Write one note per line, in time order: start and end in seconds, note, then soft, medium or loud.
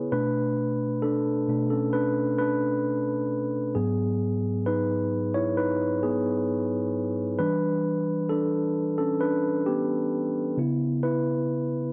0.00 0.14 B3 medium
0.00 0.14 E4 medium
0.00 0.14 G#4 medium
0.00 0.12 B4 loud
0.00 0.14 C#5 medium
0.12 0.73 B2 medium
0.12 0.73 A3 medium
0.12 1.00 D4 medium
0.12 1.06 B4 loud
1.02 1.48 D4 medium
1.02 1.69 A4 medium
1.48 1.90 B2 soft
1.48 1.90 A3 soft
1.48 1.90 D4 soft
1.70 1.93 C#4 medium
1.70 1.92 A4 medium
1.93 2.15 D4 medium
1.93 2.14 B4 loud
2.38 3.27 D4 medium
2.38 3.26 B4 medium
3.75 4.36 G#2 medium
3.75 4.37 F#3 soft
3.75 4.63 B3 medium
3.75 4.62 G#4 medium
4.66 5.31 D#4 medium
4.66 5.31 B4 medium
5.34 5.57 E4 medium
5.34 5.56 C#5 medium
5.57 6.00 D#4 medium
5.57 6.04 B4 loud
6.03 6.91 B3 medium
6.03 6.90 G#4 medium
7.39 10.54 E3 medium
7.39 10.54 G3 soft
7.39 8.27 D4 medium
7.39 8.33 B4 loud
8.29 8.95 D4 medium
8.29 8.97 A4 medium
8.98 9.21 C#4 medium
8.98 9.22 A4 medium
9.21 9.43 D4 medium
9.21 9.41 B4 loud
9.66 10.54 B3 medium
9.66 10.54 G4 medium
10.57 11.18 C#3 medium
10.57 11.19 B3 medium
10.57 11.04 E4 medium
11.03 11.91 E4 medium
11.03 11.90 B4 medium